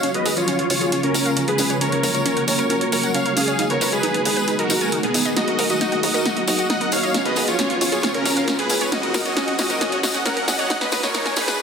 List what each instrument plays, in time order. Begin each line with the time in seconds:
Already playing: supersaw synth C#5 F5, riser
0.03 ambient pad C#3 F3 G#3 F4, synth pluck C#4, closed hi-hat, tambourine
0.14 synth pluck G#4, supersaw synth B4 D#5, closed hi-hat
0.25 analog synth bass C#2, synth pluck G#4, open hi-hat, tambourine
0.37 supersaw synth F4 C#5, synth pluck C#5, closed hi-hat, tambourine
0.47 synth pluck C#4, closed hi-hat, tambourine
0.59 synth pluck F5, closed hi-hat
0.70 analog synth bass C#2, synth pluck C#4, supersaw synth F4 C#5, open hi-hat, tambourine
0.81 synth pluck G#4, closed hi-hat, tambourine
0.92 synth pluck C#4, closed hi-hat, tambourine
1.03 supersaw synth C#4 A#4, synth pluck C#5, closed hi-hat
1.14 analog synth bass C#2, synth pluck C#4, open hi-hat, tambourine
1.25 synth pluck F5, closed hi-hat, tambourine
1.37 synth pluck C#4, closed hi-hat, tambourine
1.48 synth pluck G#4, supersaw synth G#4 B4, closed hi-hat
1.58 analog synth bass C#2, synth pluck C#4, open hi-hat, tambourine
1.70 synth pluck C#5, closed hi-hat, tambourine
1.81 ambient pad F#3 A#3 F#4, synth pluck C#4, supersaw synth A#4 C#5, closed hi-hat, tambourine
1.92 synth pluck A#4, closed hi-hat
2.03 analog synth bass F#1, synth pluck A#4, open hi-hat, tambourine
2.14 supersaw synth A#4 C#5, synth pluck C#5, closed hi-hat, tambourine
2.25 synth pluck C#4, closed hi-hat, tambourine
2.37 synth pluck F#5, closed hi-hat
2.48 analog synth bass F#1, synth pluck C#4, supersaw synth A#4 C#5, open hi-hat, tambourine
2.58 synth pluck A#4, closed hi-hat, tambourine
2.69 synth pluck C#4, closed hi-hat, tambourine
2.81 synth pluck C#5, closed hi-hat
2.92 analog synth bass F#1, synth pluck C#4, supersaw synth A#4 C#5, open hi-hat, tambourine
3.03 synth pluck F#5, closed hi-hat, tambourine
3.14 synth pluck C#4, supersaw synth C#5 F5, closed hi-hat, tambourine
3.26 synth pluck A#4, closed hi-hat
3.37 analog synth bass F#1, synth pluck C#4, supersaw synth G#4 F5, open hi-hat, tambourine
3.48 synth pluck C#5, closed hi-hat, tambourine
3.59 ambient pad D#3 G#3 B3 G#4, synth pluck D#4, closed hi-hat, tambourine
3.70 supersaw synth A#4 C#5, synth pluck B4, closed hi-hat
3.81 analog synth bass G#1, synth pluck B4, open hi-hat, tambourine
3.92 supersaw synth G#4 B4, synth pluck D#5, closed hi-hat, tambourine
4.03 synth pluck D#4, closed hi-hat, tambourine
4.14 synth pluck G#5, closed hi-hat
4.25 analog synth bass G#1, synth pluck D#4, supersaw synth G#4 B4, open hi-hat, tambourine
4.37 synth pluck B4, closed hi-hat, tambourine
4.48 synth pluck D#4, closed hi-hat
4.59 supersaw synth F#4 A#4, synth pluck D#5, closed hi-hat
4.70 analog synth bass G#1, synth pluck D#4, open hi-hat, tambourine
4.81 synth pluck G#5, closed hi-hat, tambourine
4.92 synth pluck D#4, closed hi-hat
5.03 supersaw synth B3 G#4, synth pluck B4, closed hi-hat
5.14 analog synth bass G#1, synth pluck D#4, open hi-hat, tambourine
5.25 synth pluck D#5, closed hi-hat, tambourine
5.37 ambient pad F#3 A#3 F#4, synth pluck D#4, supersaw synth F#4 D#5, snare, closed hi-hat, tambourine
5.48 synth pluck A#4, closed hi-hat
5.59 analog synth bass D#2, synth pluck A#4, open hi-hat, tambourine
5.70 supersaw synth F#4 D#5, synth pluck D#5, closed hi-hat, tambourine
5.81 synth pluck D#4, snare, closed hi-hat, tambourine
5.92 synth pluck F#5, closed hi-hat
6.03 analog synth bass D#2, synth pluck D#4, supersaw synth F#4 D#5, open hi-hat, tambourine
6.14 synth pluck A#4, closed hi-hat, tambourine
6.25 synth pluck D#4, snare, closed hi-hat
6.36 synth pluck D#5, closed hi-hat
6.47 analog synth bass D#2, synth pluck D#4, supersaw synth F#4 D#5, open hi-hat, tambourine
6.59 synth pluck F#5, closed hi-hat, tambourine
6.70 synth pluck D#4, supersaw synth D#5 F#5, snare, closed hi-hat, tambourine
6.81 synth pluck A#4, closed hi-hat
6.92 analog synth bass D#2, synth pluck D#4, supersaw synth C#5 F5, open hi-hat, tambourine
7.03 synth pluck D#5, closed hi-hat, tambourine
7.14 ambient pad C#3 F3 G#3 F4, synth pluck C#4, snare, closed hi-hat, tambourine
7.25 synth pluck G#4, supersaw synth B4 D#5, closed hi-hat
7.36 analog synth bass C#2, synth pluck G#4, open hi-hat, tambourine
7.47 supersaw synth F4 C#5, synth pluck C#5, closed hi-hat, tambourine
7.59 synth pluck C#4, snare, closed hi-hat, tambourine
7.70 synth pluck F5, closed hi-hat
7.81 analog synth bass C#2, synth pluck C#4, supersaw synth F4 C#5, open hi-hat, tambourine
7.92 synth pluck G#4, closed hi-hat, tambourine
8.03 synth pluck C#4, snare, closed hi-hat, tambourine
8.14 supersaw synth C#4 A#4, synth pluck C#5, closed hi-hat
8.25 analog synth bass C#2, synth pluck C#4, open hi-hat, tambourine
8.37 synth pluck F5, closed hi-hat, tambourine
8.48 synth pluck C#4, snare, closed hi-hat, tambourine
8.59 supersaw synth G#4 B4, synth pluck G#4, closed hi-hat
8.69 analog synth bass C#2, synth pluck C#4, open hi-hat, tambourine
8.81 synth pluck C#5, closed hi-hat, tambourine
8.92 ambient pad F#3 A#3 F#4, synth pluck C#4, supersaw synth F#4 D#5, snare, closed hi-hat, tambourine
9.03 synth pluck A#4, closed hi-hat
9.14 synth pluck A#4, snare, open hi-hat, tambourine
9.25 supersaw synth F#4 D#5, synth pluck C#5, closed hi-hat, tambourine
9.37 synth pluck C#4, snare, closed hi-hat, tambourine
9.48 synth pluck F#5, closed hi-hat
9.58 analog synth bass F#1, synth pluck C#4, supersaw synth F#4 D#5, snare, open hi-hat, tambourine
9.69 synth pluck A#4, closed hi-hat, tambourine
9.81 synth pluck C#4, snare, closed hi-hat, tambourine
9.92 synth pluck C#5, closed hi-hat
10.03 synth pluck C#4, supersaw synth F#4 D#5, snare, open hi-hat, tambourine
10.14 synth pluck F#5, closed hi-hat, tambourine
10.25 synth pluck C#4, supersaw synth A#4 F#5, snare, closed hi-hat, tambourine
10.37 synth pluck A#4, closed hi-hat
10.48 analog synth bass F#1, synth pluck C#4, supersaw synth D#5 F#5, snare, open hi-hat, tambourine
10.59 synth pluck C#5, closed hi-hat, tambourine
10.70 synth pluck D#4, snare, closed hi-hat, tambourine
10.81 synth pluck B4, supersaw synth B4 D#5, snare, closed hi-hat
10.92 analog synth bass G#1, synth pluck B4, snare, open hi-hat, tambourine
11.03 supersaw synth A#4 C#5, synth pluck D#5, snare, closed hi-hat, tambourine
11.14 synth pluck D#4, snare, closed hi-hat, tambourine
11.26 synth pluck G#5, snare, closed hi-hat
11.36 analog synth bass G#1, synth pluck D#4, supersaw synth G#4 B4, snare, open hi-hat, tambourine
11.48 synth pluck B4, snare, closed hi-hat, tambourine